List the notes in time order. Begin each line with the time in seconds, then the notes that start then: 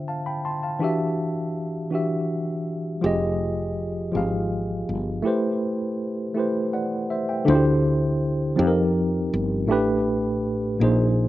Already playing: D3 D4 F4 C5 E5
0.08 F5 A5
0.26 G5 B5
0.45 A5 C6
0.63 F5 A5
0.79 E3 D4 F#4 G4
0.84 E5
1.90 E3 D4 F#4 G4
1.95 E5
3.01 F1 F3 F4 G4 G#4
3.06 D#5
4.12 G#1 F3 F4 G4 G#4
4.17 F5
4.89 G1
5.22 A3 E4 G4 B4
5.27 C5
6.34 A3 E4 G4 B4
6.39 C5
6.73 D5 F#5
7.10 C5 E5
7.29 E5 G5
7.45 D2 D3 D4 E4 F4
7.50 C5
7.55 G4
8.56 F2 F3 C4 D#4 G4
8.61 A4
8.67 A#4
9.34 G1
9.67 A1 A2 A3 D4 G4
9.72 B4
10.79 A#1 A#2 A#3 D#4 G#4
10.84 C5